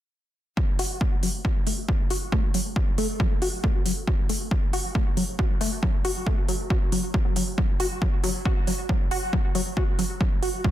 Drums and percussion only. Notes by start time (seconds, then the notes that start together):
0.57 kick
0.79 open hi-hat
1.01 kick
1.23 open hi-hat
1.45 kick
1.67 open hi-hat
1.89 kick
2.10 open hi-hat
2.32 kick
2.54 open hi-hat
2.76 kick
2.98 open hi-hat
3.20 kick
3.42 open hi-hat
3.64 kick
3.86 open hi-hat
4.07 kick
4.29 open hi-hat
4.51 kick
4.73 open hi-hat
4.95 kick
5.17 open hi-hat
5.39 kick
5.61 open hi-hat
5.83 kick
6.05 open hi-hat
6.27 kick
6.48 open hi-hat
6.70 kick
6.92 open hi-hat
7.14 kick
7.36 open hi-hat
7.58 kick
7.80 open hi-hat
8.02 kick
8.24 open hi-hat
8.45 kick
8.67 open hi-hat
8.89 kick
9.11 open hi-hat
9.33 kick
9.55 open hi-hat
9.77 kick
9.99 open hi-hat
10.21 kick
10.43 open hi-hat
10.64 kick